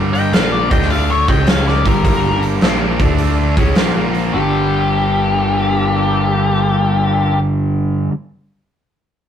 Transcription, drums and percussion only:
0.15 open hi-hat
0.33 snare, open hi-hat
0.71 kick, open hi-hat
0.82 snare
0.90 open hi-hat
1.28 kick, open hi-hat
1.47 snare, open hi-hat
1.68 snare
1.85 kick, open hi-hat
2.05 kick, open hi-hat
2.43 open hi-hat
2.61 snare, open hi-hat
2.99 kick, open hi-hat
3.18 open hi-hat
3.57 kick, open hi-hat
3.75 snare, open hi-hat
4.14 open hi-hat

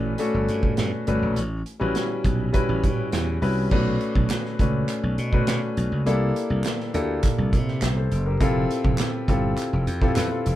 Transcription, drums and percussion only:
0.18 closed hi-hat
0.49 closed hi-hat
0.63 kick
0.77 snare, closed hi-hat
1.07 closed hi-hat
1.36 closed hi-hat
1.66 closed hi-hat
1.95 snare, closed hi-hat
2.24 kick, closed hi-hat
2.54 kick, closed hi-hat
2.83 kick, closed hi-hat
3.12 snare, closed hi-hat
3.42 open hi-hat
3.71 kick, crash
4.01 closed hi-hat
4.15 kick
4.30 snare, clap, closed hi-hat
4.46 snare
4.59 kick, closed hi-hat
4.88 clap, closed hi-hat
5.18 closed hi-hat
5.33 kick
5.47 snare, clap, closed hi-hat
5.77 closed hi-hat
6.07 closed hi-hat
6.36 closed hi-hat
6.64 snare, clap, closed hi-hat
6.81 snare
6.94 closed hi-hat
7.23 kick, clap, closed hi-hat
7.53 kick, closed hi-hat
7.68 snare
7.82 snare, clap, closed hi-hat
8.12 closed hi-hat
8.41 kick, closed hi-hat
8.71 snare, closed hi-hat
8.85 kick
8.98 snare, clap, closed hi-hat
9.28 kick, closed hi-hat
9.57 clap, closed hi-hat
9.87 closed hi-hat
10.02 kick, snare
10.16 snare, clap, closed hi-hat
10.46 closed hi-hat

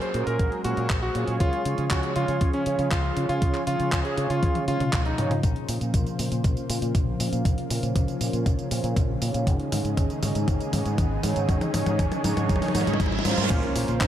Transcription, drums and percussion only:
0.02 closed hi-hat
0.14 closed hi-hat
0.27 closed hi-hat
0.39 kick, closed hi-hat
0.52 closed hi-hat
0.64 closed hi-hat
0.77 closed hi-hat
0.90 kick, clap, closed hi-hat
1.15 closed hi-hat
1.28 closed hi-hat
1.40 kick, closed hi-hat
1.53 closed hi-hat
1.65 closed hi-hat
1.78 closed hi-hat
1.91 kick, clap, closed hi-hat
2.03 closed hi-hat
2.16 closed hi-hat
2.28 closed hi-hat
2.41 kick, closed hi-hat
2.53 closed hi-hat
2.66 closed hi-hat
2.79 closed hi-hat
2.91 kick, clap, closed hi-hat
3.17 closed hi-hat
3.29 closed hi-hat
3.42 kick, closed hi-hat
3.54 clap, closed hi-hat
3.67 closed hi-hat
3.80 closed hi-hat
3.92 kick, clap, closed hi-hat
4.05 closed hi-hat
4.18 closed hi-hat
4.30 closed hi-hat
4.43 kick, closed hi-hat, high tom
4.55 closed hi-hat, high tom
4.68 closed hi-hat
4.80 closed hi-hat, mid tom
4.93 kick, clap, closed hi-hat, mid tom
5.06 closed hi-hat
5.18 closed hi-hat, mid tom
5.31 closed hi-hat, mid tom
5.43 kick, closed hi-hat, mid tom, tambourine
5.56 closed hi-hat
5.69 open hi-hat, tambourine
5.81 closed hi-hat, tambourine
5.94 kick, closed hi-hat, mid tom, tambourine
6.07 closed hi-hat, tambourine
6.19 open hi-hat, tambourine
6.32 closed hi-hat, tambourine
6.44 kick, closed hi-hat, mid tom, tambourine
6.57 closed hi-hat, tambourine
6.70 open hi-hat, tambourine
6.82 closed hi-hat, tambourine
6.95 kick, closed hi-hat, mid tom, tambourine
7.20 open hi-hat, tambourine
7.33 closed hi-hat, tambourine
7.45 kick, closed hi-hat, mid tom, tambourine
7.58 closed hi-hat
7.70 open hi-hat, tambourine
7.83 closed hi-hat, tambourine
7.96 kick, closed hi-hat, mid tom, tambourine
8.08 closed hi-hat, tambourine
8.21 open hi-hat, tambourine
8.33 closed hi-hat, tambourine
8.46 kick, closed hi-hat, mid tom, tambourine
8.59 closed hi-hat, tambourine
8.71 open hi-hat, tambourine
8.84 closed hi-hat, tambourine
8.96 kick, closed hi-hat, mid tom, tambourine
9.22 open hi-hat, tambourine
9.34 closed hi-hat, tambourine
9.47 kick, closed hi-hat, mid tom, tambourine
9.60 closed hi-hat
9.72 open hi-hat, mid tom, tambourine
9.85 closed hi-hat, tambourine
9.97 kick, closed hi-hat, mid tom, tambourine
10.10 closed hi-hat, tambourine
10.23 open hi-hat, mid tom, tambourine
10.35 closed hi-hat, tambourine
10.48 kick, closed hi-hat, mid tom, tambourine
10.60 closed hi-hat, tambourine
10.73 open hi-hat, mid tom, tambourine
10.86 closed hi-hat, tambourine
10.98 kick, closed hi-hat, mid tom, tambourine
11.23 open hi-hat, mid tom, tambourine
11.36 closed hi-hat, tambourine
11.49 kick, closed hi-hat, mid tom, tambourine
11.61 closed hi-hat, mid tom, tambourine
11.74 open hi-hat, mid tom, tambourine
11.86 closed hi-hat, mid tom, tambourine
11.99 kick, closed hi-hat, mid tom, tambourine
12.12 closed hi-hat, mid tom, tambourine
12.24 open hi-hat, mid tom, tambourine
12.37 closed hi-hat, mid tom, tambourine
12.49 kick, closed hi-hat, mid tom, tambourine
12.56 mid tom
12.62 open hi-hat, mid tom, tambourine
12.68 mid tom
12.75 open hi-hat, mid tom, tambourine
12.81 mid tom
12.87 closed hi-hat, mid tom, tambourine
12.94 mid tom
13.00 kick, closed hi-hat, mid tom, tambourine
13.06 mid tom
13.12 mid tom
13.19 mid tom
13.25 open hi-hat, mid tom, tambourine
13.31 mid tom
13.38 closed hi-hat, mid tom, tambourine
13.44 mid tom
13.50 kick, closed hi-hat, tambourine, crash
13.63 closed hi-hat
13.76 open hi-hat, tambourine
13.88 closed hi-hat, tambourine
14.01 kick, clap, closed hi-hat, tambourine

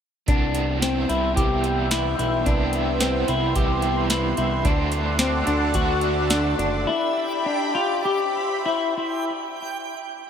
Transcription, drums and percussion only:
0.28 kick, closed hi-hat
0.55 closed hi-hat
0.82 snare, closed hi-hat
1.10 closed hi-hat
1.37 kick, closed hi-hat
1.64 closed hi-hat
1.91 snare, closed hi-hat
2.19 closed hi-hat
2.46 kick, closed hi-hat
2.73 closed hi-hat
3.00 snare, closed hi-hat
3.28 closed hi-hat
3.56 kick, closed hi-hat
3.82 closed hi-hat
4.10 snare, closed hi-hat
4.37 closed hi-hat
4.65 kick, closed hi-hat
4.92 closed hi-hat
5.19 snare, closed hi-hat
5.47 closed hi-hat
5.74 kick, closed hi-hat
6.01 closed hi-hat
6.30 snare, closed hi-hat
6.59 closed hi-hat

